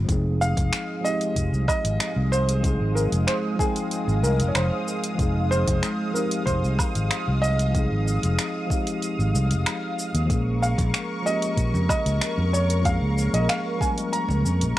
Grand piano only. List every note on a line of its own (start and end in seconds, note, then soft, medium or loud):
0.41 1.07 F5 loud
1.04 1.67 D#5 loud
1.68 2.34 D#5 loud
2.32 2.98 C5 loud
2.95 3.03 A#4 medium
3.27 3.34 C5 loud
3.59 4.25 G#4 loud
4.23 4.47 A#4 medium
4.48 4.55 C#5 medium
4.56 5.01 C5 medium
5.51 6.17 C5 loud
6.14 6.47 A#4 medium
6.46 7.45 C5 medium
7.42 9.30 D#5 loud
10.62 11.28 F5 medium
11.26 11.88 D#5 loud
11.90 12.55 D#5 medium
12.53 12.86 C#5 medium
12.86 13.35 F5 loud
13.34 13.50 D#5 medium
13.49 13.82 F5 loud
13.81 13.88 G#5 loud
14.13 14.73 A#5 loud